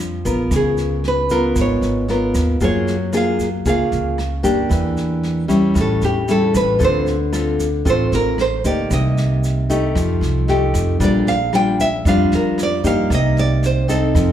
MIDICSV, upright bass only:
0, 0, Header, 1, 2, 480
1, 0, Start_track
1, 0, Tempo, 524476
1, 472, Time_signature, 4, 2, 24, 8
1, 13107, End_track
2, 0, Start_track
2, 0, Title_t, "Upright bass"
2, 0, Program_c, 0, 32
2, 0, Note_on_c, 0, 41, 77
2, 194, Note_off_c, 0, 41, 0
2, 231, Note_on_c, 0, 34, 83
2, 455, Note_off_c, 0, 34, 0
2, 469, Note_on_c, 0, 37, 85
2, 1394, Note_off_c, 0, 37, 0
2, 1429, Note_on_c, 0, 32, 90
2, 1654, Note_off_c, 0, 32, 0
2, 1659, Note_on_c, 0, 32, 78
2, 2112, Note_off_c, 0, 32, 0
2, 2146, Note_on_c, 0, 39, 84
2, 2372, Note_off_c, 0, 39, 0
2, 2390, Note_on_c, 0, 42, 90
2, 3315, Note_off_c, 0, 42, 0
2, 3344, Note_on_c, 0, 37, 86
2, 3572, Note_off_c, 0, 37, 0
2, 3590, Note_on_c, 0, 37, 81
2, 4038, Note_off_c, 0, 37, 0
2, 4070, Note_on_c, 0, 42, 88
2, 4295, Note_off_c, 0, 42, 0
2, 4308, Note_on_c, 0, 40, 93
2, 5234, Note_off_c, 0, 40, 0
2, 5268, Note_on_c, 0, 33, 94
2, 5493, Note_off_c, 0, 33, 0
2, 5511, Note_on_c, 0, 40, 76
2, 5958, Note_off_c, 0, 40, 0
2, 5993, Note_on_c, 0, 33, 89
2, 6216, Note_off_c, 0, 33, 0
2, 6231, Note_on_c, 0, 38, 88
2, 7155, Note_off_c, 0, 38, 0
2, 7191, Note_on_c, 0, 33, 89
2, 7415, Note_off_c, 0, 33, 0
2, 7434, Note_on_c, 0, 33, 74
2, 7880, Note_off_c, 0, 33, 0
2, 7912, Note_on_c, 0, 38, 87
2, 8135, Note_off_c, 0, 38, 0
2, 8150, Note_on_c, 0, 36, 90
2, 9074, Note_off_c, 0, 36, 0
2, 9113, Note_on_c, 0, 41, 85
2, 9336, Note_off_c, 0, 41, 0
2, 9345, Note_on_c, 0, 36, 88
2, 9795, Note_off_c, 0, 36, 0
2, 9834, Note_on_c, 0, 41, 92
2, 10056, Note_off_c, 0, 41, 0
2, 10068, Note_on_c, 0, 34, 91
2, 10993, Note_off_c, 0, 34, 0
2, 11029, Note_on_c, 0, 41, 95
2, 11254, Note_off_c, 0, 41, 0
2, 11280, Note_on_c, 0, 41, 75
2, 11723, Note_off_c, 0, 41, 0
2, 11751, Note_on_c, 0, 43, 89
2, 11975, Note_off_c, 0, 43, 0
2, 11991, Note_on_c, 0, 36, 88
2, 12916, Note_off_c, 0, 36, 0
2, 12950, Note_on_c, 0, 41, 94
2, 13107, Note_off_c, 0, 41, 0
2, 13107, End_track
0, 0, End_of_file